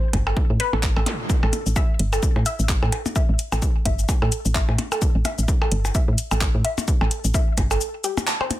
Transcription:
0.13 0.33 G1 medium
0.13 kick medium
0.13 closed hi-hat loud
0.13 percussion blips medium
0.27 0.29 A4 medium
0.27 percussion blips medium
0.37 kick loud
0.50 0.58 A2 medium
0.60 0.66 B4 loud
0.60 closed hi-hat medium
0.73 0.91 A1 medium
0.73 0.76 A4 medium
0.73 percussion blips medium
0.83 kick loud
0.83 clap loud
0.96 1.04 A1 medium
0.96 0.99 A4 medium
0.96 percussion blips medium
1.06 closed hi-hat medium
1.06 zap medium
1.06 percussion blips medium
1.30 kick loud
1.30 cabasa soft
1.43 1.51 A1 loud
1.43 1.45 A4 medium
1.43 percussion blips medium
1.53 closed hi-hat medium
1.53 percussion blips medium
1.53 cabasa soft
1.66 1.74 A1 medium
1.66 cabasa soft
1.76 1.82 E5 medium
1.76 kick loud
1.76 cabasa soft
1.76 percussion blips medium
1.99 2.19 G1 medium
1.99 closed hi-hat medium
2.13 2.15 A4 medium
2.13 cabasa soft
2.13 percussion blips medium
2.23 kick loud
2.23 cabasa soft
2.36 2.44 A2 loud
2.36 percussion blips medium
2.46 2.52 E5 medium
2.46 closed hi-hat medium
2.46 cabasa soft
2.59 2.77 A1 medium
2.59 cabasa soft
2.69 kick loud
2.69 clap medium
2.69 cabasa soft
2.83 2.90 A2 medium
2.83 2.85 A4 medium
2.83 percussion blips medium
2.92 closed hi-hat medium
2.92 percussion blips medium
3.06 percussion blips medium
3.06 cabasa soft
3.16 3.22 E5 medium
3.16 kick loud
3.16 cabasa medium
3.29 3.37 A1 medium
3.39 closed hi-hat medium
3.39 cabasa soft
3.52 3.60 A1 medium
3.52 3.54 A4 medium
3.52 cabasa soft
3.52 percussion blips medium
3.62 kick loud
3.62 cabasa soft
3.85 4.05 G1 medium
3.85 3.91 E5 medium
3.85 kick medium
3.85 closed hi-hat medium
3.99 cabasa soft
4.09 kick loud
4.09 cabasa soft
4.09 percussion blips medium
4.22 4.30 A2 medium
4.22 4.24 A4 medium
4.22 percussion blips medium
4.32 closed hi-hat medium
4.32 cabasa soft
4.45 4.63 A1 medium
4.45 cabasa soft
4.55 4.61 E5 medium
4.55 kick loud
4.55 clap medium
4.55 cabasa soft
4.69 4.76 A2 medium
4.69 percussion blips medium
4.78 closed hi-hat medium
4.78 percussion blips medium
4.92 4.94 A4 medium
4.92 cabasa soft
4.92 percussion blips medium
5.02 kick loud
5.02 cabasa medium
5.15 5.23 A1 medium
5.25 5.31 E5 medium
5.25 closed hi-hat medium
5.25 percussion blips medium
5.25 cabasa soft
5.25 percussion blips medium
5.38 5.46 A1 medium
5.38 cabasa soft
5.48 kick loud
5.48 cabasa medium
5.62 5.64 A4 medium
5.62 percussion blips medium
5.71 5.91 G1 medium
5.71 closed hi-hat medium
5.85 cabasa soft
5.85 percussion blips medium
5.95 6.01 E5 medium
5.95 kick loud
5.95 cabasa medium
6.08 6.16 A2 medium
6.18 closed hi-hat medium
6.18 cabasa soft
6.31 6.49 A1 medium
6.31 6.33 A4 medium
6.31 cabasa soft
6.31 percussion blips medium
6.41 kick loud
6.41 clap loud
6.41 cabasa medium
6.41 percussion blips medium
6.55 6.63 A2 medium
6.64 6.70 E5 medium
6.64 closed hi-hat medium
6.78 percussion blips medium
6.78 cabasa soft
6.88 kick loud
6.88 cabasa medium
7.01 7.09 A1 loud
7.01 7.03 A4 medium
7.01 percussion blips medium
7.11 closed hi-hat medium
7.11 cabasa soft
7.24 7.32 A1 medium
7.24 cabasa soft
7.34 7.40 E5 medium
7.34 kick loud
7.34 cabasa medium
7.58 7.77 G1 medium
7.58 kick medium
7.58 closed hi-hat medium
7.58 cabasa soft
7.58 percussion blips medium
7.71 7.73 A4 medium
7.71 cabasa soft
7.71 percussion blips medium
7.81 cabasa medium
8.04 8.08 G4 medium
8.04 closed hi-hat medium
8.04 cabasa medium
8.17 percussion blips medium
8.17 cabasa soft
8.17 percussion blips medium
8.27 8.31 A5 medium
8.27 clap loud
8.27 cabasa medium
8.41 8.44 C5 loud
8.41 percussion blips medium
8.51 closed hi-hat medium
8.51 percussion blips medium
8.51 cabasa soft

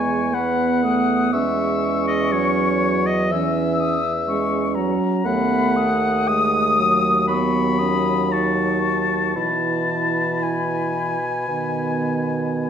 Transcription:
0.00 1.29 E2 medium
0.00 0.36 G#3 soft
0.00 0.34 B3 soft
0.00 0.36 G#5 medium
0.00 0.36 C#6 medium
0.34 0.85 B3 medium
0.34 1.35 B3 medium
0.34 1.32 F#5 medium
0.34 0.83 B5 medium
0.84 1.33 A3 medium
0.84 1.35 D#6 medium
1.33 4.94 E2 medium
1.33 2.34 G#3 soft
1.33 3.15 C#4 medium
1.33 2.05 E5 medium
1.33 3.08 C#6 medium
2.08 2.33 D#5 medium
2.32 3.33 F#3 medium
2.32 3.08 C#5 medium
3.06 3.33 D#5 medium
3.31 4.02 E3 medium
3.31 4.00 C#4 medium
3.31 4.76 E5 medium
3.31 3.81 E6 medium
3.80 4.11 D#6 medium
4.28 4.78 G#3 medium
4.28 5.27 C#4 medium
4.28 4.76 C#6 medium
4.75 5.27 F#3 medium
4.75 5.28 A#5 medium
5.24 9.32 D#2 medium
5.24 6.31 A3 medium
5.24 5.78 B3 medium
5.24 6.30 F#5 medium
5.24 5.78 B5 medium
5.76 7.30 A3 soft
5.76 7.31 D#6 medium
6.28 6.81 G#3 medium
6.28 7.27 D#6 medium
6.79 9.36 F#3 medium
7.28 7.80 B3 soft
7.28 8.34 B5 medium
7.28 7.81 C#6 medium
7.79 8.33 C#4 soft
7.79 8.31 D#6 medium
8.32 9.35 D#4 soft
8.32 9.36 A5 medium
8.32 9.38 C#6 medium
9.36 11.45 B2 soft
9.36 11.16 E3 soft
9.36 11.16 E4 soft
9.36 10.44 A5 medium
9.36 12.70 B5 medium
10.43 12.70 G#5 medium
11.48 12.70 B2 soft
11.48 12.70 D#3 soft
11.48 12.70 B3 soft

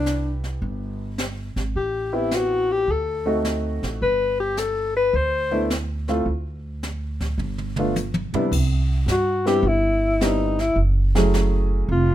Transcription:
0.00 0.57 C2 medium
0.00 1.06 B3 medium
0.00 0.44 D4 medium
0.00 1.06 D4 medium
0.00 1.07 E4 medium
0.00 1.07 G4 medium
0.06 snare medium
0.06 hi-hat pedal medium
0.44 snare soft
0.62 1.52 G1 medium
0.62 brush sweep soft
1.18 snare medium
1.18 hi-hat pedal soft
1.56 1.73 G#1 medium
1.56 snare soft
1.75 2.84 A1 medium
1.75 2.16 G4 medium
1.75 brush sweep soft
2.13 2.84 B3 medium
2.13 2.84 C4 medium
2.13 2.84 E4 medium
2.13 2.37 E4 medium
2.13 2.84 G4 medium
2.31 snare medium
2.31 hi-hat pedal medium
2.35 2.74 F#4 medium
2.72 2.93 G4 medium
2.88 3.78 D2 medium
2.88 3.46 A4 medium
2.88 brush sweep soft
3.26 3.97 A3 medium
3.26 3.97 C4 medium
3.26 3.97 D#4 medium
3.26 3.97 F#4 medium
3.45 snare medium
3.45 hi-hat pedal medium
3.83 3.99 A1 medium
3.83 snare soft
4.01 5.10 G1 medium
4.01 4.37 B4 medium
4.01 brush sweep soft
4.40 4.60 G4 medium
4.57 4.95 A4 medium
4.57 snare medium
4.57 hi-hat pedal medium
4.97 5.18 B4 medium
5.13 6.22 D2 medium
5.13 5.71 C5 medium
5.13 brush sweep soft
5.51 5.68 A3 medium
5.51 5.68 B3 medium
5.51 5.68 D4 medium
5.51 5.68 E4 medium
5.70 snare medium
5.70 hi-hat pedal medium
6.08 6.24 A3 medium
6.08 6.25 C4 medium
6.08 6.25 E4 medium
6.08 6.25 F4 medium
6.08 snare soft
6.26 7.34 D2 medium
6.26 brush sweep soft
6.83 snare medium
6.83 hi-hat pedal medium
7.21 kick medium
7.21 snare soft
7.38 8.28 G1 medium
7.38 mid tom soft
7.58 mid tom soft
7.76 7.94 A3 medium
7.76 7.94 B3 medium
7.76 7.94 D4 medium
7.76 7.94 F4 medium
7.76 mid tom medium
7.96 hi-hat pedal soft
7.96 high tom medium
8.14 high tom medium
8.33 8.50 C3 medium
8.33 8.50 G3 medium
8.33 8.51 B3 medium
8.33 8.50 D4 medium
8.33 8.50 E4 medium
8.33 muted upright bass stroke soft
8.33 floor tom medium
8.51 9.04 C2 medium
8.51 brush sweep soft
8.51 kick medium
8.51 crash medium
9.06 9.59 G2 medium
9.06 snare medium
9.06 hi-hat pedal medium
9.12 9.45 F#4 medium
9.46 9.62 G3 medium
9.46 9.62 B3 medium
9.46 9.62 C4 medium
9.46 9.63 D4 medium
9.46 9.63 E4 medium
9.46 9.69 G4 medium
9.46 snare soft
9.63 10.72 G1 medium
9.63 brush sweep soft
9.68 10.25 E4 medium
10.21 10.54 G3 medium
10.21 10.55 B3 soft
10.21 10.55 C4 medium
10.21 10.55 D4 medium
10.21 10.63 D#4 medium
10.21 10.55 E4 medium
10.21 snare medium
10.21 hi-hat pedal medium
10.59 10.78 E4 medium
10.59 snare soft
10.76 11.85 F#1 medium
10.76 brush sweep soft
11.15 11.86 F#3 medium
11.15 11.86 A3 medium
11.15 11.86 C#4 medium
11.15 11.86 E4 medium
11.15 11.86 G#4 medium
11.15 snare medium
11.34 snare medium
11.34 hi-hat pedal soft
11.88 12.15 F1 medium
11.88 12.15 F4 medium
11.88 brush sweep soft

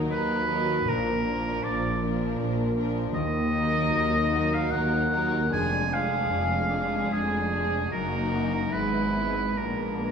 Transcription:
0.00 0.90 D#3 soft
0.00 0.47 F#3 soft
0.00 0.46 D#4 soft
0.00 0.90 D#4 soft
0.00 0.47 A#4 soft
0.00 0.90 F#5 soft
0.10 0.78 D#2 soft
0.10 0.90 B4 medium
0.10 0.90 D#5 soft
0.48 0.87 F#3 soft
0.48 0.87 D#4 soft
0.48 2.38 A#4 soft
0.48 0.86 A#4 soft
0.86 1.55 A#1 medium
0.86 1.98 A#2 soft
0.86 3.17 A#2 soft
0.86 1.55 A#2 medium
0.86 1.25 F3 soft
0.86 1.22 D4 soft
0.86 1.25 A#4 soft
0.86 1.65 A#4 medium
1.23 2.01 F3 soft
1.23 5.15 A#3 soft
1.23 2.00 D4 soft
1.23 2.01 A#4 soft
1.64 2.31 A#1 medium
1.64 2.31 A#2 soft
1.64 2.75 F4 soft
1.64 2.02 D5 medium
2.02 2.77 F3 soft
2.02 2.73 D4 soft
2.02 2.76 A#4 soft
2.02 3.17 D5 soft
2.39 3.06 A#1 medium
2.39 3.05 A#2 medium
2.39 3.91 A#4 soft
2.75 3.14 F3 soft
2.75 3.12 D4 soft
2.75 3.17 F4 soft
2.75 3.14 A#4 soft
3.13 3.84 D#2 medium
3.13 4.28 D#3 soft
3.13 5.55 D#3 soft
3.13 4.55 D#5 medium
3.51 4.33 F#3 soft
3.51 4.31 D#4 soft
3.51 5.54 D#4 soft
3.51 4.32 A#4 medium
3.92 4.63 D#2 medium
3.92 4.63 D#2 soft
3.92 5.10 A#4 soft
4.32 5.11 F#3 soft
4.32 5.10 D#4 soft
4.32 5.11 A#4 soft
4.32 5.55 F#5 soft
4.54 4.72 F5 medium
4.70 5.43 D#2 medium
4.70 5.55 D#5 soft
4.70 5.51 F#5 medium
5.11 5.52 F#3 soft
5.11 5.51 D#4 soft
5.11 5.55 A#4 soft
5.11 5.51 A#4 soft
5.50 6.22 F1 medium
5.50 7.95 F2 soft
5.50 6.22 F2 soft
5.50 5.90 G#3 soft
5.50 5.90 D4 soft
5.50 5.91 G#4 soft
5.50 5.95 G#5 medium
5.90 7.95 G#3 soft
5.90 6.70 G#3 soft
5.90 6.69 D4 soft
5.90 6.70 G#4 soft
5.90 7.14 F5 medium
6.30 7.03 F1 medium
6.30 7.02 F2 soft
6.30 7.10 G#4 soft
6.70 7.51 G#3 soft
6.70 7.50 D4 soft
6.70 7.51 G#4 soft
6.70 7.95 D5 soft
7.11 7.83 F1 soft
7.11 7.83 F2 medium
7.11 7.95 G#4 soft
7.11 7.91 G#4 medium
7.51 7.93 G#3 soft
7.51 7.95 D4 soft
7.51 7.92 D4 soft
7.51 7.92 G#4 soft
7.91 8.70 F#1 soft
7.91 8.76 F#2 soft
7.91 8.70 F#2 soft
7.91 8.70 A#3 soft
7.91 8.70 D#4 soft
7.91 8.70 F#4 soft
7.91 8.74 A#4 medium
8.32 8.77 D#4 soft
8.32 8.77 F#4 soft
8.72 9.59 G#1 soft
8.72 9.62 G#2 soft
8.72 9.59 G#2 soft
8.72 9.59 G#3 soft
8.72 9.59 B3 soft
8.72 9.58 E4 soft
8.72 9.58 B4 medium
9.15 10.02 B3 soft
9.15 9.62 E4 soft
9.57 10.12 A#1 soft
9.57 10.12 A#2 soft
9.57 10.12 G#3 soft
9.57 10.12 B3 soft
9.57 10.12 D4 soft
9.57 10.12 A#4 soft
10.03 10.12 B3 soft
10.03 10.12 D4 soft

